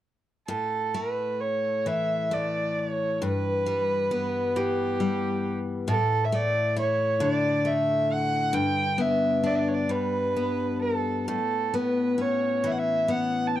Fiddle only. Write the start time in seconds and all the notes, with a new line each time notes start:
0.48 A4
0.95 B4
1.41 C#5
1.87 E5
2.33 D5
2.78 C#5
3.24 B4
4.57 G4
5.89 A4
6.25 E5
6.35 D5
6.79 C#5
7.22 D5
7.66 E5
8.12 F#5
8.54 G5
9.00 E5
9.46 D5
9.55 D5 E5
9.68 C#5
9.74 D5
9.91 B4
10.81 A4
11.28 A4
11.75 B4
12.21 C#5
12.66 E5
12.71 F#5
12.78 E5
13.10 F#5
13.47 A5
13.56 G5